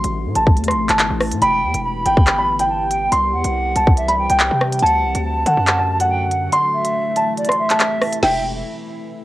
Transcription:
Already playing: C3 E3 A3 E4 C6
0.04 A1, closed hi-hat
0.26 A2
0.35 A1 A5, closed hi-hat
0.47 kick
0.57 E2, closed hi-hat
0.64 closed hi-hat
0.68 C6, cross-stick, closed hi-hat
0.73 A1
0.89 G1 A5, clap, closed hi-hat
0.99 clap, closed hi-hat
1.11 A1
1.21 cross-stick, open hi-hat
1.32 A2, closed hi-hat
1.42 E1 G3 B3 G4 G5 B5, closed hi-hat
1.63 E2
1.74 E1, closed hi-hat
1.84 B5
2.06 G1 G5, closed hi-hat
2.17 kick
2.27 clap, closed hi-hat
2.38 B5
2.59 G5, closed hi-hat
2.69 A5
2.91 G5, closed hi-hat
3.12 C2 C4 C6, closed hi-hat
3.33 E2 F#5
3.44 C2, closed hi-hat
3.76 C2 A5, closed hi-hat
3.87 kick
3.97 E5, closed hi-hat
4.08 B5, closed hi-hat
4.18 G5
4.30 C2 G5, closed hi-hat
4.40 clap, closed hi-hat
4.51 C3
4.61 cross-stick
4.72 closed hi-hat
4.79 D2 D3 F#3 A3 F#4 F#5 A5, closed hi-hat
4.86 closed hi-hat
5.04 C2
5.15 D2, closed hi-hat
5.25 A5
5.46 D3 F#5, closed hi-hat
5.57 F#2
5.67 clap, closed hi-hat
5.79 A5
6.00 F#5, closed hi-hat
6.10 G5
6.31 F#5, closed hi-hat
6.53 C3 E3 E4 C6, closed hi-hat
6.74 E5
6.85 closed hi-hat
7.16 A5, closed hi-hat
7.38 D5, closed hi-hat
7.45 closed hi-hat
7.49 C6, cross-stick, closed hi-hat
7.59 E5
7.70 A5, clap, closed hi-hat
7.80 clap, closed hi-hat
8.02 cross-stick, open hi-hat
8.13 closed hi-hat
8.23 E1 E5 G5, snare, crash

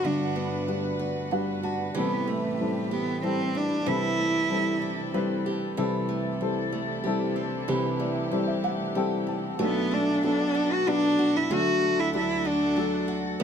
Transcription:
Already playing: G1 G2 D3 G3 A3 B3 D4 F#4 B4 F#5
0.04 G1 G2 D4 F#4
0.36 B3
0.67 G3 D4 F#4 B4
0.99 F#4 D5
1.31 G3 D4 F#4 B4 F#5
1.63 F#4 A5
1.95 A1 A2 C3 E3 G3 B3 E4 G4 A4
2.27 A3
2.60 G3 C4 E4 A4
2.91 B3 G4
3.23 G3 C4 E4 A4
3.55 D4 G4
3.86 C2 C3 E3 G3 C4 D4 E4 G4 A4
4.19 A3
4.50 G3 C4 E4 A4
4.82 G4
5.14 G3 C4 E4 B4
5.46 G4
5.77 C2 C3 E3 G3 C4 D4 E4 G4 A4
6.09 A3
6.41 G3 C4 E4 A4
6.72 A3
7.04 G3 C4 E4 G4 A4
7.36 C4
7.68 C2 C3 E3 G4
8.00 A3 D5
8.31 G3 C4 E4 A4 D5
8.47 E5
8.64 A3 F#5
8.95 G3 C4 E4 G4 A4 G5
9.27 C4 A5
9.59 B1 B2 F#3 A3 B3 D4 A4 F#5
9.63 B3
9.91 A3 D4
10.23 F#3 B3 D4 A4
10.55 F#4
10.72 F#4
10.86 F#3 B3 D4 F#4
11.19 F#4
11.36 E4
11.50 D2 D3 F#3 A3 D4 F#4 A4
11.82 A3
12.00 E4
12.14 F#3 A3 D4 E4 A4
12.45 D4 F#4
12.76 F#3 A3 D4 A4
13.08 F#4
13.40 E2 E3 G3 B3

